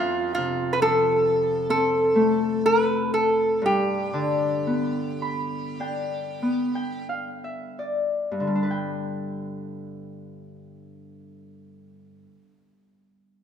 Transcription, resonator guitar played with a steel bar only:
0.00 0.33 F4 medium
0.35 0.74 F4 medium
0.73 0.81 B4 medium
0.82 1.69 A4 medium
1.70 2.65 A4 medium
2.66 2.83 A#4 medium
2.83 3.13 B4 medium
3.14 3.64 A4 medium
3.66 7.06 G4 medium

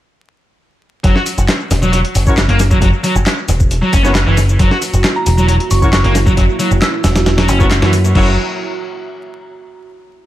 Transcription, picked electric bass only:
1.04 1.14 F#1 loud
1.38 1.47 F#1 loud
1.71 2.01 E1 loud
2.15 2.46 F#1 loud
2.49 2.79 F#1 medium
2.82 2.91 F#1 loud
3.15 3.24 F#1 loud
3.48 3.79 E1 loud
3.93 4.24 F#1 loud
4.26 4.57 F#1 loud
4.60 4.69 F#1 loud
4.93 5.02 F#1 loud
5.26 5.57 E1 loud
5.71 6.01 F#1 loud
6.04 6.34 F#1 loud
6.37 6.47 F#1 loud
6.71 6.80 F#1 loud
7.04 7.48 E1 loud
7.48 7.79 F#1 loud
7.82 8.12 F#2 medium
8.15 8.36 F#1 medium

